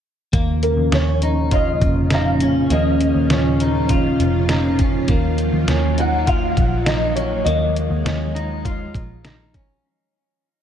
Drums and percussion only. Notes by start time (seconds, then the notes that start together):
0.33 kick, closed hi-hat
0.63 closed hi-hat
0.92 snare, closed hi-hat
1.22 closed hi-hat
1.51 kick, closed hi-hat
1.81 kick, closed hi-hat
2.10 snare, closed hi-hat
2.40 closed hi-hat
2.70 closed hi-hat
3.01 closed hi-hat
3.30 snare, closed hi-hat
3.60 closed hi-hat
3.89 kick, closed hi-hat
4.20 closed hi-hat
4.49 snare, closed hi-hat
4.79 kick, closed hi-hat
5.08 kick, closed hi-hat
5.38 closed hi-hat
5.68 snare, closed hi-hat
5.98 closed hi-hat
6.27 kick, closed hi-hat
6.57 kick, closed hi-hat
6.86 snare, closed hi-hat
7.17 closed hi-hat
7.47 closed hi-hat
7.76 closed hi-hat
8.06 snare, closed hi-hat
8.36 closed hi-hat
8.65 kick, closed hi-hat
8.95 kick, closed hi-hat
9.25 snare, closed hi-hat
9.54 kick, closed hi-hat